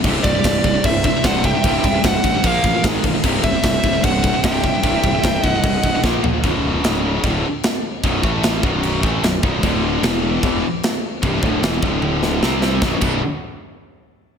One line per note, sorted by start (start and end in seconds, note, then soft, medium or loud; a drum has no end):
0.04 0.17 C1 loud
0.04 0.24 C2 medium
0.04 0.24 G2 loud
0.04 0.24 C3 loud
0.04 1.64 E3 loud
0.04 1.64 E4 medium
0.04 kick loud
0.04 crash medium
0.24 0.37 C1 medium
0.24 0.34 C2 medium
0.24 0.33 G2 medium
0.24 0.80 G4 medium
0.24 0.86 D5 medium
0.24 kick medium
0.24 crash medium
0.35 0.43 C2 medium
0.35 0.44 G2 medium
0.44 0.57 C1 medium
0.44 0.62 C2 medium
0.44 0.63 G2 medium
0.44 kick loud
0.44 snare loud
0.44 crash medium
0.64 0.77 C1 medium
0.64 0.73 C2 medium
0.64 0.73 G2 medium
0.64 kick medium
0.64 crash medium
0.74 0.84 C2 medium
0.74 0.84 G2 medium
0.84 1.10 C1 medium
0.84 1.03 C2 medium
0.84 1.03 G2 medium
0.84 1.03 C5 medium
0.84 1.04 E5 loud
0.84 kick loud
0.84 crash medium
1.04 1.15 C2 medium
1.04 1.15 G2 medium
1.04 1.23 C5 medium
1.04 1.25 E5 loud
1.04 kick loud
1.04 crash medium
1.16 1.23 C2 medium
1.16 1.24 G2 medium
1.24 1.50 C1 medium
1.24 1.43 C2 medium
1.24 1.43 G2 medium
1.24 1.44 C3 loud
1.24 1.43 C5 medium
1.24 1.45 F#5 medium
1.24 kick loud
1.24 snare loud
1.24 crash medium
1.44 1.54 C2 medium
1.44 1.53 G2 medium
1.44 2.00 E5 loud
1.44 2.06 G5 loud
1.44 kick medium
1.44 crash medium
1.55 1.64 C2 medium
1.55 1.64 G2 loud
1.64 1.77 C1 loud
1.64 1.83 C2 medium
1.64 1.84 G2 loud
1.64 1.84 C3 loud
1.64 2.43 E3 loud
1.64 2.44 E4 loud
1.64 kick loud
1.64 crash medium
1.84 1.97 C1 medium
1.84 1.94 C2 medium
1.84 1.93 G2 medium
1.84 kick medium
1.84 crash medium
1.94 2.03 C2 medium
1.94 2.04 G2 medium
2.04 2.17 C1 medium
2.04 2.22 C2 medium
2.04 2.23 G2 medium
2.04 2.42 C5 medium
2.04 2.46 F#5 loud
2.04 kick loud
2.04 snare loud
2.04 crash medium
2.23 2.37 A1 medium
2.23 2.34 C2 medium
2.23 2.33 G2 medium
2.23 kick medium
2.23 crash medium
2.35 2.45 C2 medium
2.35 2.44 G2 medium
2.44 2.57 A#1 medium
2.44 2.63 A#2 medium
2.44 2.63 F3 medium
2.44 2.63 A#3 loud
2.44 2.82 A#4 medium
2.44 2.83 F5 loud
2.44 kick loud
2.44 crash medium
2.64 2.77 A1 medium
2.64 2.74 A#2 medium
2.64 2.73 F3 medium
2.64 kick loud
2.64 crash medium
2.75 2.83 A#2 medium
2.75 2.84 F3 medium
2.83 2.97 G#1 loud
2.83 3.02 G#2 medium
2.83 3.02 D#3 medium
2.83 3.03 G#3 loud
2.83 kick loud
2.83 snare loud
2.83 crash medium
3.03 3.17 B0 medium
3.03 3.13 G#2 medium
3.03 3.12 D#3 medium
3.03 kick medium
3.03 crash medium
3.14 3.24 G#2 medium
3.14 3.24 D#3 medium
3.24 3.37 C1 loud
3.24 3.43 C2 loud
3.24 3.43 G2 loud
3.24 3.43 C3 loud
3.24 4.82 E3 loud
3.24 4.83 E4 loud
3.24 kick loud
3.24 crash medium
3.43 3.56 C1 loud
3.43 3.53 C2 medium
3.43 3.53 G2 medium
3.43 3.99 C5 medium
3.43 4.04 E5 medium
3.43 kick medium
3.43 crash medium
3.54 3.63 C2 medium
3.54 3.63 G2 medium
3.63 3.76 C1 medium
3.63 3.82 C2 medium
3.63 3.82 G2 medium
3.63 kick loud
3.63 snare loud
3.63 crash medium
3.83 3.97 C1 loud
3.83 3.93 C2 medium
3.83 3.92 G2 medium
3.83 kick medium
3.83 crash medium
3.93 4.01 C2 medium
3.93 4.02 G2 medium
4.03 4.30 C1 medium
4.03 4.21 C2 medium
4.03 4.21 G2 medium
4.03 4.41 C5 medium
4.03 4.45 F#5 loud
4.03 kick loud
4.03 crash medium
4.23 4.32 C2 medium
4.23 4.32 G2 medium
4.23 kick medium
4.23 crash medium
4.33 4.43 C2 medium
4.33 4.43 G2 medium
4.44 4.70 C1 loud
4.44 4.62 C2 loud
4.44 4.62 G2 medium
4.44 4.63 C3 loud
4.44 5.44 E5 medium
4.44 5.46 G5 loud
4.44 kick loud
4.44 snare loud
4.44 crash medium
4.63 4.73 C2 medium
4.63 4.73 G2 medium
4.63 kick medium
4.63 crash medium
4.74 4.82 C2 medium
4.74 4.83 G2 medium
4.83 4.96 C1 loud
4.83 5.02 C2 loud
4.83 5.03 G2 loud
4.83 5.03 C3 loud
4.83 6.02 E3 loud
4.83 6.03 E4 loud
4.83 kick loud
4.83 crash medium
5.03 5.16 C1 loud
5.03 5.14 C2 medium
5.03 5.14 G2 medium
5.03 kick medium
5.03 crash medium
5.15 5.23 C2 medium
5.15 5.23 G2 medium
5.24 5.37 C1 loud
5.24 5.42 C2 medium
5.24 5.42 G2 medium
5.24 kick loud
5.24 snare loud
5.24 crash medium
5.44 5.57 C1 medium
5.44 5.54 C2 medium
5.44 5.54 G2 medium
5.44 6.00 D#5 medium
5.44 6.01 F#5 loud
5.44 kick medium
5.44 crash medium
5.55 5.63 C2 medium
5.55 5.64 G2 medium
5.63 5.76 C1 medium
5.63 5.82 C2 medium
5.63 5.82 G2 medium
5.63 kick loud
5.63 crash medium
5.83 5.96 B0 medium
5.83 5.94 C2 medium
5.83 5.94 G2 medium
5.83 kick medium
5.83 crash medium
5.95 6.05 C2 medium
5.95 6.04 G2 medium
6.03 6.16 A#1 medium
6.03 6.23 A#2 medium
6.03 6.23 F3 medium
6.03 6.23 A#3 loud
6.03 kick loud
6.03 snare medium
6.24 6.37 A#1 medium
6.24 6.33 A#2 medium
6.24 6.33 F3 medium
6.24 floor tom loud
6.34 6.44 A#2 medium
6.34 6.44 F3 medium
6.43 6.81 B0 medium
6.43 6.83 B1 loud
6.43 6.83 F#2 loud
6.43 6.84 B2 loud
6.43 kick loud
6.43 crash medium
6.84 7.21 C#1 medium
6.84 7.23 C#2 medium
6.84 7.24 G#2 loud
6.84 7.24 C#3 loud
6.84 snare loud
6.84 crash medium
7.23 7.42 D1 medium
7.23 7.43 D2 medium
7.23 7.44 A2 loud
7.23 7.44 D3 loud
7.23 kick loud
7.23 crash medium
7.63 snare loud
7.63 crash medium
8.04 8.22 B0 medium
8.04 8.23 B1 loud
8.04 8.23 F#2 loud
8.04 8.23 B2 loud
8.04 kick loud
8.04 crash medium
8.23 8.60 A1 loud
8.23 8.62 A2 medium
8.23 8.63 E3 loud
8.23 8.63 A3 loud
8.23 kick loud
8.43 snare loud
8.43 crash medium
8.63 9.00 B0 loud
8.63 9.02 B1 medium
8.63 9.03 F#2 loud
8.63 9.02 B2 loud
8.63 kick loud
8.83 crash medium
9.03 9.22 A1 loud
9.03 9.23 A2 loud
9.03 9.23 E3 loud
9.03 9.23 A3 loud
9.03 kick loud
9.23 9.41 B0 medium
9.23 9.39 B1 medium
9.23 9.40 F#2 medium
9.23 snare loud
9.23 crash medium
9.43 9.62 B0 loud
9.43 9.62 B1 loud
9.43 9.63 F#2 loud
9.43 9.63 B2 loud
9.43 kick loud
9.63 10.00 D1 medium
9.63 10.02 D2 loud
9.63 10.03 A2 loud
9.63 10.03 D3 loud
9.63 kick loud
9.63 crash medium
10.02 10.40 E1 loud
10.02 10.42 E2 loud
10.02 10.42 B2 loud
10.02 10.42 E3 loud
10.02 snare loud
10.02 crash medium
10.43 10.61 E1 medium
10.43 10.62 E2 loud
10.43 10.62 B2 loud
10.43 10.63 E3 loud
10.43 kick loud
10.43 crash medium
10.83 snare loud
10.83 crash medium
11.22 11.41 C1 loud
11.22 11.42 C2 loud
11.22 11.42 G2 loud
11.22 11.42 C3 loud
11.22 kick loud
11.22 crash medium
11.43 11.61 D1 loud
11.43 11.61 D2 medium
11.43 11.62 A2 loud
11.43 11.62 D3 medium
11.43 kick loud
11.62 11.81 E1 loud
11.62 11.81 E2 medium
11.62 11.81 B2 loud
11.62 11.82 E3 loud
11.62 snare loud
11.62 crash medium
11.81 12.38 D1 medium
11.81 12.41 D2 medium
11.81 12.42 A2 medium
11.81 12.42 D3 loud
11.81 kick loud
12.02 high tom medium
12.23 snare medium
12.42 12.80 C2 loud
12.42 12.82 C3 medium
12.42 12.82 G3 medium
12.42 12.82 C4 loud
12.42 snare loud
12.62 snare medium
12.82 12.93 B0 loud
12.82 12.94 B1 loud
12.82 12.95 F#2 loud
12.82 12.95 B2 loud
12.82 12.95 F#3 loud
12.82 12.95 D4 loud
12.82 kick loud
12.82 snare medium
13.01 13.21 B0 loud
13.01 13.18 B1 medium
13.01 13.18 F#2 medium
13.01 13.19 B2 loud
13.01 13.19 F#3 loud
13.01 13.19 D4 loud
13.01 kick loud
13.01 crash medium